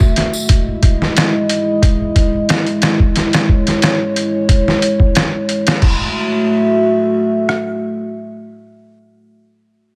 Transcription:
0.00 0.45 A3 medium
0.00 0.45 F#4 medium
0.00 0.45 E5 medium
0.00 kick medium
0.16 snare soft
0.16 closed hi-hat medium
0.33 tambourine medium
0.48 5.78 G#3 medium
0.48 5.78 E4 medium
0.48 3.13 D#5 medium
0.48 kick loud
0.48 closed hi-hat medium
0.83 kick medium
0.83 closed hi-hat medium
1.02 snare soft
1.17 snare loud
1.17 closed hi-hat medium
1.49 closed hi-hat medium
1.82 kick loud
1.82 closed hi-hat medium
2.16 kick medium
2.16 closed hi-hat medium
2.49 snare loud
2.49 closed hi-hat medium
2.67 closed hi-hat soft
2.82 snare medium
2.82 closed hi-hat medium
3.00 kick medium
3.15 5.79 C#5 medium
3.15 snare soft
3.15 closed hi-hat medium
3.33 snare medium
3.33 closed hi-hat medium
3.49 kick medium
3.67 snare soft
3.67 closed hi-hat medium
3.82 snare loud
3.82 closed hi-hat medium
4.16 closed hi-hat medium
4.49 kick medium
4.49 closed hi-hat medium
4.68 snare soft
4.82 closed hi-hat medium
5.00 kick medium
5.15 snare medium
5.15 closed hi-hat medium
5.49 closed hi-hat medium
5.67 snare medium
5.67 closed hi-hat medium
5.81 9.25 A3 medium
5.81 9.25 F#4 medium
5.81 9.24 E5 medium
5.81 kick medium
5.81 crash medium
7.49 cross-stick medium

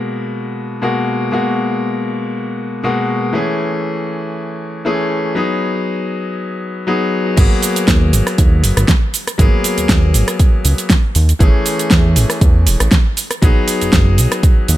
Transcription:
0.00 0.79 B2 medium
0.00 0.79 G#3 medium
0.00 0.79 A#3 medium
0.00 0.80 F#4 medium
0.82 1.29 B2 medium
0.82 1.30 G#3 medium
0.82 1.30 A#3 medium
0.82 1.30 F#4 medium
1.31 2.80 B2 medium
1.31 2.81 G#3 medium
1.31 2.81 A#3 medium
1.31 2.81 F#4 medium
2.83 3.31 B2 medium
2.83 3.31 G#3 medium
2.83 3.31 A#3 medium
2.83 3.32 F#4 medium
3.33 4.82 E3 medium
3.33 4.82 A3 medium
3.33 4.82 C#4 medium
3.33 4.83 G#4 medium
4.85 5.33 E3 medium
4.85 5.33 A3 medium
4.85 5.33 C#4 medium
4.85 5.33 G#4 medium
5.35 6.84 F#3 medium
5.35 6.84 B3 medium
5.35 6.84 D#4 medium
5.35 6.85 G#4 medium
6.87 7.34 F#3 medium
6.87 7.35 B3 medium
6.87 7.35 D#4 medium
6.87 7.35 G#4 medium
7.37 7.47 G#1 loud
7.37 8.85 F#3 medium
7.37 8.86 A#3 medium
7.37 8.86 B3 medium
7.37 8.86 G#4 loud
7.37 kick loud
7.37 closed hi-hat medium
7.37 crash loud
7.37 cabasa soft
7.63 open hi-hat loud
7.63 cabasa medium
7.76 closed hi-hat medium
7.76 cabasa soft
7.88 8.14 D#2 medium
7.88 kick loud
7.88 snare loud
7.88 closed hi-hat medium
7.88 cabasa soft
8.13 8.22 G#1 loud
8.13 open hi-hat loud
8.13 cabasa medium
8.27 cross-stick medium
8.27 open hi-hat medium
8.27 cabasa soft
8.38 8.65 D#2 loud
8.38 kick loud
8.38 closed hi-hat medium
8.38 cabasa soft
8.63 8.73 F#1 medium
8.63 open hi-hat loud
8.63 cabasa medium
8.77 8.85 G#1 loud
8.77 cross-stick medium
8.77 closed hi-hat medium
8.77 cabasa soft
8.88 kick loud
8.88 snare loud
8.88 closed hi-hat medium
8.88 cabasa soft
9.14 open hi-hat loud
9.14 cabasa medium
9.27 cross-stick medium
9.27 closed hi-hat medium
9.27 cabasa soft
9.38 9.48 G#1 loud
9.38 10.87 F#3 medium
9.38 10.87 A#3 medium
9.38 10.88 B3 medium
9.38 10.88 G#4 loud
9.38 kick loud
9.38 closed hi-hat medium
9.38 cabasa soft
9.64 open hi-hat loud
9.64 cabasa medium
9.78 9.87 D#2 soft
9.78 closed hi-hat medium
9.78 cabasa soft
9.89 10.16 D#2 medium
9.89 kick loud
9.89 snare loud
9.89 closed hi-hat medium
9.89 cabasa soft
10.14 10.24 G#1 loud
10.14 open hi-hat loud
10.14 cabasa medium
10.28 cross-stick medium
10.28 closed hi-hat medium
10.28 cabasa soft
10.39 kick loud
10.39 closed hi-hat medium
10.39 cabasa soft
10.65 10.74 C#2 medium
10.65 open hi-hat loud
10.65 cabasa medium
10.78 closed hi-hat medium
10.78 cabasa soft
10.90 kick loud
10.90 snare loud
10.90 closed hi-hat medium
10.90 cabasa soft
11.15 11.33 D#2 medium
11.15 open hi-hat loud
11.15 cabasa medium
11.29 closed hi-hat medium
11.29 cabasa soft
11.39 11.50 A1 loud
11.39 12.88 E3 medium
11.39 12.89 A3 medium
11.39 12.89 C#4 medium
11.39 12.89 G#4 loud
11.39 kick loud
11.39 closed hi-hat medium
11.39 cabasa soft
11.66 open hi-hat loud
11.66 cabasa medium
11.79 closed hi-hat medium
11.79 cabasa soft
11.91 12.18 E2 medium
11.91 kick loud
11.91 snare loud
11.91 closed hi-hat soft
11.91 cabasa soft
12.16 12.26 A1 loud
12.16 open hi-hat loud
12.16 cabasa medium
12.30 cross-stick medium
12.30 open hi-hat medium
12.30 cabasa soft
12.41 12.69 E2 loud
12.41 kick loud
12.41 closed hi-hat soft
12.41 cabasa soft
12.67 12.76 E1 medium
12.67 open hi-hat loud
12.67 cabasa medium
12.80 12.88 A1 medium
12.80 cross-stick medium
12.80 closed hi-hat medium
12.80 cabasa soft
12.91 kick loud
12.91 snare loud
12.91 closed hi-hat medium
12.91 cabasa soft
13.17 open hi-hat loud
13.17 cabasa medium
13.31 cross-stick medium
13.31 closed hi-hat medium
13.31 cabasa soft
13.42 13.52 B1 loud
13.42 14.77 F#3 medium
13.42 14.77 B3 medium
13.42 14.77 D#4 medium
13.42 14.77 G#4 loud
13.42 kick loud
13.42 closed hi-hat soft
13.42 cabasa soft
13.68 open hi-hat loud
13.68 cabasa medium
13.81 13.91 F#1 soft
13.81 closed hi-hat medium
13.81 cabasa soft
13.93 14.20 F#1 medium
13.93 kick loud
13.93 snare loud
13.93 closed hi-hat medium
13.93 cabasa soft
14.18 14.27 B1 loud
14.18 open hi-hat loud
14.18 cabasa medium
14.32 cross-stick medium
14.32 closed hi-hat medium
14.32 cabasa soft
14.43 kick loud
14.43 closed hi-hat soft
14.43 cabasa soft
14.68 14.77 D#2 medium
14.68 open hi-hat loud
14.68 cabasa medium

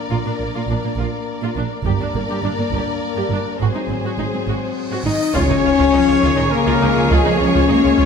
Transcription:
0.00 1.81 A#3 soft
0.00 1.81 D4 soft
0.00 1.81 A#4 soft
0.00 1.82 D5 soft
0.11 0.17 A#1 soft
0.11 0.17 A#2 medium
0.11 0.17 F4 soft
0.25 0.31 A#2 soft
0.25 0.32 D4 soft
0.39 0.45 A#1 soft
0.39 0.45 A#2 soft
0.39 0.47 A#3 soft
0.55 0.61 A#2 medium
0.55 0.61 F4 soft
0.69 0.75 A#1 soft
0.69 0.75 A#2 soft
0.69 0.76 D4 soft
0.83 0.89 A#2 soft
0.83 0.90 A#3 soft
0.98 1.03 A#1 medium
0.98 1.04 A#2 medium
0.98 1.05 F4 soft
1.42 1.48 A#2 medium
1.42 1.48 F4 medium
1.56 1.62 A#1 soft
1.56 1.62 A#2 soft
1.56 1.62 D4 soft
1.84 1.91 G1 medium
1.84 1.91 G2 medium
1.84 3.56 A#3 medium
1.84 3.56 D4 medium
1.84 1.91 G4 medium
1.84 3.56 A#4 medium
1.84 3.57 D5 medium
1.84 taiko soft
1.99 2.05 G2 soft
1.99 2.06 D4 soft
2.14 2.20 G1 soft
2.14 2.20 G2 soft
2.14 2.21 A#3 soft
2.28 2.34 G2 medium
2.28 2.36 G4 medium
2.42 2.49 G1 soft
2.42 2.48 G2 soft
2.42 2.50 D4 soft
2.57 2.63 G2 soft
2.57 2.64 A#3 soft
2.72 2.78 G1 medium
2.72 2.78 G2 medium
2.72 2.79 G4 medium
2.72 taiko soft
3.15 3.21 G2 soft
3.15 3.23 G4 soft
3.29 3.37 G1 soft
3.29 3.35 G2 soft
3.29 3.38 D4 soft
3.59 3.66 G#1 soft
3.59 3.65 G#2 soft
3.59 5.05 F#3 soft
3.59 5.03 C4 soft
3.59 3.66 F#4 soft
3.59 5.14 G#4 soft
3.59 5.03 C5 soft
3.59 cymbal swell soft
3.73 3.79 G#2 soft
3.73 3.81 D#4 soft
3.88 3.95 G#1 soft
3.88 3.94 G#2 soft
3.88 3.95 C4 soft
4.02 4.08 G#2 soft
4.02 4.10 F#4 soft
4.18 4.24 G#1 soft
4.18 4.24 G#2 soft
4.18 4.24 D#4 soft
4.32 4.38 G#2 soft
4.32 4.39 C4 soft
4.47 4.53 G#1 soft
4.47 4.53 G#2 soft
4.47 4.54 F#4 soft
4.90 4.96 G#2 soft
4.90 4.97 F#4 soft
5.04 5.11 G#1 soft
5.04 5.11 G#2 soft
5.04 5.32 D#4 medium
5.04 5.11 D#4 soft
5.04 5.33 D#5 medium
5.34 5.41 C#2 medium
5.34 6.19 C#3 medium
5.34 8.05 F3 medium
5.34 8.05 G#3 medium
5.34 6.34 C#4 loud
5.34 5.41 F4 medium
5.34 8.05 G#4 medium
5.34 6.51 C#5 medium
5.34 8.05 C#5 medium
5.34 6.52 C#5 loud
5.34 taiko loud
5.34 impact medium
5.49 5.55 C#2 medium
5.49 5.56 D#4 medium
5.64 5.70 C#2 medium
5.64 5.70 F4 medium
5.78 5.84 C#2 medium
5.78 5.84 F4 medium
5.78 taiko medium
5.93 5.99 C#2 medium
5.93 6.20 F3 medium
5.93 5.99 D#4 medium
6.07 6.14 C#2 medium
6.07 6.13 F4 medium
6.22 6.29 C#2 medium
6.22 6.51 D#3 medium
6.22 6.28 F4 medium
6.22 taiko medium
6.37 6.44 C#2 medium
6.37 6.43 D#4 medium
6.37 taiko low-mid medium
6.51 7.10 C#3 medium
6.51 7.08 A#3 loud
6.51 7.10 A#4 medium
6.67 6.73 C#2 medium
6.67 6.72 F4 medium
6.81 6.87 C#2 medium
6.81 6.87 D#4 medium
6.96 7.02 C#2 medium
6.96 7.02 F4 medium
7.10 7.16 C#2 medium
7.10 7.68 F3 medium
7.10 7.39 G#3 medium
7.10 7.16 F4 medium
7.10 7.39 G#4 medium
7.10 taiko medium
7.25 7.31 C#2 medium
7.25 7.31 D#4 soft
7.39 7.45 C#2 medium
7.39 8.05 C#4 loud
7.39 7.45 F4 medium
7.39 8.05 C#5 medium
7.54 7.60 C#2 medium
7.54 7.60 F4 medium
7.54 taiko medium
7.68 7.74 C#2 medium
7.68 7.96 A#3 medium
7.68 7.74 D#4 medium
7.83 7.89 C#2 medium
7.83 7.89 F4 medium
7.97 8.04 C#2 medium
7.97 8.05 G#3 medium
7.97 8.03 F4 medium
7.97 taiko medium

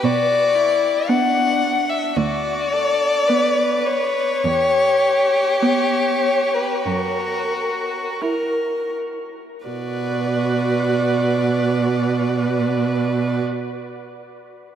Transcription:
0.04 0.88 B2 medium
0.04 0.56 F#4 soft
0.04 1.10 D5 medium
0.55 1.09 E4 soft
1.08 1.91 B3 soft
1.08 2.16 D4 soft
1.08 1.91 F#5 medium
1.90 2.18 E5 medium
2.17 3.07 D2 medium
2.17 2.74 F#4 soft
2.17 3.88 D5 medium
2.73 3.29 A4 soft
3.28 4.17 B3 soft
3.28 4.46 B4 soft
3.86 5.61 C#5 medium
4.44 5.39 E2 soft
4.44 6.85 G4 medium
5.62 6.56 B3 soft
5.62 6.55 C#5 medium
6.54 6.89 B4 soft
6.86 7.96 F#2 soft
6.86 8.23 F#4 soft
6.86 8.21 A#4 soft
8.21 9.36 E4 soft
8.21 8.95 A#4 soft
9.66 13.43 B2 soft
9.66 13.42 F#4 soft
9.66 13.40 B4 soft
9.66 13.42 D5 soft

